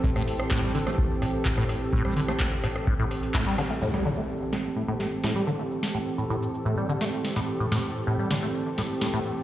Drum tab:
HH |--o---o---o---o-|--o---o---oo--o-|----------------|----------------|
SH |----------------|----------------|--xxxxxxxxxxxxxx|x-xxxxxxxxxxxxxx|
CP |----x-------x---|----x-------x---|----------------|----------------|
SD |-r-rr--r--r--rr-|-r-rr-rr--r---r-|-o----o---o-o---|-o---------o-oo-|
BD |o---o---o---o---|o---o---o---o---|----------------|----------------|

HH |----------------|
SH |x-xxxxxxxxxxxxxx|
CP |----------------|
SD |-o----o---o-o---|
BD |----------------|